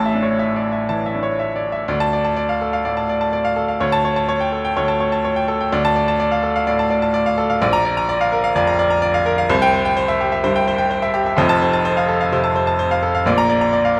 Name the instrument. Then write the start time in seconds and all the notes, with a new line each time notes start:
grand piano
Already playing: A1 A2 A5
0.06 E5
0.14 D4
0.23 C#5
0.39 E5
0.56 D5
0.72 E5
0.89 E3 A5
1.06 E5
1.15 D4
1.23 C#5
1.39 E5
1.56 D5
1.72 E5
1.88 D2 D5
2.00 A5
2.13 D5
2.25 A5
2.36 D5
2.49 F5
2.61 A4
2.73 F5
2.85 A2 D5
2.97 A5
3.09 D5
3.21 A5
3.33 D5
3.45 F5
3.56 A4
3.68 F5
3.80 D2 C#5
3.92 A5
4.05 C#5
4.16 A5
4.29 C#5
4.40 G5
4.52 A4
4.65 G5
4.77 D2 C#5
4.88 A5
5.00 C#5
5.12 A5
5.25 C#5
5.36 G5
5.48 A4
5.61 G5
5.72 D2 D5
5.85 A5
5.96 D5
6.08 A5
6.20 D5
6.31 F5
6.43 A4
6.56 F5
6.67 A2 D5
6.79 A5
6.90 D5
7.02 A5
7.14 D5
7.26 F5
7.38 A4
7.50 F5
7.62 A#1 D5
7.73 A#5
7.85 D5
7.97 A#5
8.09 D5
8.21 F5
8.32 A#4
8.44 F5
8.55 F2 D5
8.67 A#5
8.79 D5
8.90 A#5
9.02 D5
9.14 F5
9.26 A#4
9.38 F5
9.50 C2 C5
9.62 G5
9.74 C5
9.85 G5
9.97 C5
10.08 E5
10.20 G4
10.32 E5
10.44 G2 C5
10.56 G5
10.68 C5
10.78 G5
10.90 C5
11.02 E5
11.14 G4
11.26 E5
11.37 F1 F2 C5
11.49 A5
11.62 C5
11.73 A5
11.85 C5
11.97 F5
12.09 A4
12.21 F5
12.32 C3 C5
12.44 A5
12.56 C5
12.67 A5
12.79 C5
12.91 F5
13.03 A4
13.15 F5
13.26 A#1 A#2 D5
13.38 A#5
13.50 D5
13.61 A#5
13.73 D5
13.85 F5
13.97 A#4